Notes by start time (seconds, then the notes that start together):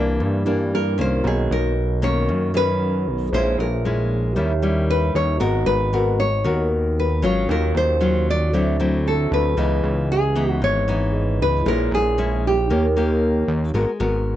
Already playing: C2 C3 E3 A#3 D4 E4 G4 A#4 D5
0.20 G2
0.46 E3 A#3 D4 E4 G4 A#4 D5
0.75 A#4
0.98 C2 D#3 A#3 C#4 C5
1.22 B1 B2 F#4 A#5
1.26 G#4 C#5 D#5
1.51 B1 A#4
2.02 D#3 A#3 C#4 C#5
2.29 F#2
2.54 D#3 C#4 B4
3.07 B1
3.30 A#1 A#2 G#4 C5 C#5
3.34 G#3 C#4 E4 C5 E5
3.58 A#1 A#4
3.85 G#3 C#4 E4
4.33 D#2 D#3 G3 C#4 E4 G4 A#4 C#5
4.39 E5
4.62 G3 C#4 E4
4.90 B4
5.15 D#2 C#5
5.38 G#1 G#3 B3 F#4 A#4 A#5
5.44 D#5
5.66 G#1 B4
5.93 B3 F#4 A#4
6.20 C#5
6.44 D#2 D#3 B3 F#4 A#4
7.00 B4
7.22 G#1 F#3 C#4 F4 C#5
7.48 D#2 D#3 C#4 A#4 F5
7.74 D#2 C5
8.01 F#3 C#4 F4
8.30 D5
8.50 D2 D3 F#4 A4
8.54 F#3 C4 E4 C5 E5
8.80 F#3 C4 E4
9.08 A4
9.31 D2 B4
9.55 C#2 C#3 E3 B3 D#4 G#4 B4 D#5
9.83 C#2
10.12 G#4
10.36 E3 B3 D#4
10.61 G#1 G#2 C#5
10.88 E3 B3 D#4
11.13 G#4 B4 D#5
11.40 C#2 B4
11.62 A#1 A#2 C#4 E4 G#4 A#4
11.66 G#3 E4 A#4 C#5
11.91 A#1 G#4
12.18 G#3 C#4 E4
12.47 G4
12.67 D#2 D#3 A#3 C#4 D#4 G4 A#4
12.71 G4 C#5
12.97 A#3 C#4 G4
13.48 D#2
13.74 G#1 G#3 B3 F#4 A#4
14.00 G#1 B3 F#4 A#4